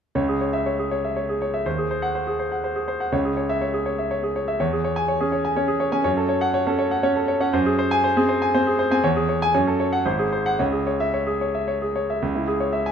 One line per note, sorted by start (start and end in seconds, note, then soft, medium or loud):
0.15 1.62 C#2 medium
0.15 0.35 C#5 medium
0.29 0.48 G#4 soft
0.41 0.61 C#5 soft
0.53 0.73 E5 medium
0.66 0.86 C#5 soft
0.79 0.99 G#4 soft
0.91 1.11 C#5 soft
1.04 1.24 E5 soft
1.16 1.36 C#5 soft
1.29 1.49 G#4 soft
1.42 1.61 C#5 soft
1.54 1.66 E5 medium
1.66 3.08 D#2 medium
1.66 1.85 C5 medium
1.78 1.98 G#4 soft
1.91 2.10 C5 medium
2.02 2.22 F#5 medium
2.15 2.35 C5 soft
2.27 2.47 G#4 soft
2.39 2.59 C5 soft
2.52 2.71 F#5 soft
2.64 2.83 C5 medium
2.76 2.95 G#4 soft
2.88 3.07 C5 medium
3.00 3.12 F#5 medium
3.12 4.55 C#2 medium
3.12 3.32 C#5 medium
3.25 3.44 G#4 soft
3.37 3.56 C#5 medium
3.49 3.69 E5 medium
3.61 3.81 C#5 soft
3.74 3.93 G#4 soft
3.86 4.06 C#5 medium
3.98 4.18 E5 soft
4.11 4.30 C#5 medium
4.23 4.43 G#4 soft
4.36 4.55 C#5 medium
4.48 4.60 E5 medium
4.60 6.01 E2 medium
4.60 4.79 C#5 medium
4.73 4.92 G#4 soft
4.84 5.03 C#5 medium
4.96 5.15 G#5 medium
5.08 5.27 C#5 medium
5.20 5.40 C#4 soft
5.20 5.40 G#4 medium
5.32 5.51 C#5 medium
5.45 5.64 G#5 medium
5.56 5.76 C#4 medium
5.56 5.76 C#5 medium
5.68 5.88 G#4 medium
5.80 6.00 C#5 medium
5.92 6.05 C#4 medium
5.92 6.05 G#5 medium
6.04 7.49 F#2 medium
6.04 6.24 C#5 medium
6.17 6.37 A4 medium
6.29 6.49 C#5 medium
6.41 6.61 F#5 medium
6.54 6.74 C#5 medium
6.67 6.87 C#4 medium
6.67 6.87 A4 medium
6.79 6.99 C#5 medium
6.91 7.11 F#5 medium
7.03 7.23 C#4 medium
7.03 7.23 C#5 medium
7.16 7.36 A4 medium
7.28 7.48 C#5 medium
7.40 7.53 C#4 medium
7.40 7.53 F#5 medium
7.53 9.00 F#2 medium
7.53 7.73 C5 medium
7.66 7.86 G#4 medium
7.79 7.98 C5 medium
7.91 8.11 G#5 medium
8.04 8.24 C5 medium
8.17 8.36 C4 medium
8.17 8.36 G#4 medium
8.29 8.49 C5 medium
8.42 8.61 G#5 medium
8.55 8.74 C4 medium
8.55 8.74 C5 medium
8.67 8.87 G#4 medium
8.79 8.99 C5 medium
8.91 9.04 C4 medium
8.91 9.04 G#5 medium
9.04 9.53 E2 medium
9.04 9.24 C#5 medium
9.16 9.36 G#4 medium
9.29 9.49 C#5 medium
9.42 9.55 G#5 medium
9.54 10.04 F#2 medium
9.54 9.75 C#5 medium
9.67 9.88 A4 medium
9.80 10.01 C#5 medium
9.93 10.06 F#5 medium
10.05 10.58 G#1 medium
10.05 10.27 C5 medium
10.19 10.40 G#4 medium
10.32 10.54 C5 medium
10.46 10.60 F#5 medium
10.59 12.18 C#2 medium
10.59 10.81 C#5 medium
10.72 10.95 G#4 soft
10.87 11.09 C#5 medium
11.00 11.22 E5 medium
11.14 11.36 C#5 medium
11.27 11.49 G#4 soft
11.41 11.63 C#5 soft
11.54 11.76 E5 soft
11.68 11.90 C#5 medium
11.82 12.03 G#4 soft
11.96 12.17 C#5 soft
12.10 12.22 E5 soft
12.22 12.92 C#2 medium
12.35 12.55 E4 soft
12.48 12.68 G#4 soft
12.60 12.81 C#5 soft
12.73 12.92 E5 medium
12.86 12.92 G#5 medium